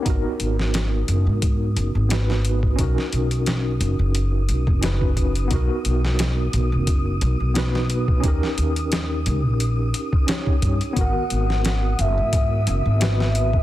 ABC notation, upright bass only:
X:1
M:4/4
L:1/16
Q:"Swing 16ths" 1/4=88
K:G#m
V:1 name="Upright bass" clef=bass
G,,, z G,,,4 F,,, G,,3 F,,, G,,,4- G,,, | B,,, z B,,,4 F,,, F,,,3 B,,, F,,,4- F,,, | B,,, z B,,,4 B,,, F,,,3 B,,, B,,,4- B,,, | D,, z D,,4 C,, A,,,3 z4 =G,, z |
G,,, z G,,,4 F,,, G,,3 F,,, G,,,4- G,,, |]